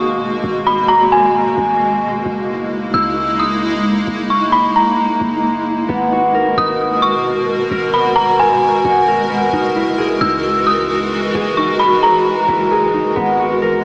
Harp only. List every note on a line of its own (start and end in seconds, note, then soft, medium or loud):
5.89 6.57 B3 loud
6.12 8.56 F#4 medium
6.34 7.71 A#4 loud
6.57 7.93 B3 medium
7.72 8.39 A#4 loud
7.94 9.29 B3 medium
8.39 9.07 A#4 medium
8.85 11.28 F#4 medium
9.08 11.20 A#4 medium
9.29 12.40 B3 medium
9.53 10.21 D#4 loud
9.76 11.63 E4 medium
9.98 11.34 G#4 loud
10.21 11.57 D#4 medium
11.35 12.03 G#4 loud
11.57 12.93 D#4 medium
12.03 12.71 G#4 medium
12.49 13.84 E4 medium
12.71 13.84 G#4 medium
12.93 13.84 D#4 medium
13.16 13.84 B3 loud
13.40 13.84 F#4 medium
13.62 13.84 A#4 loud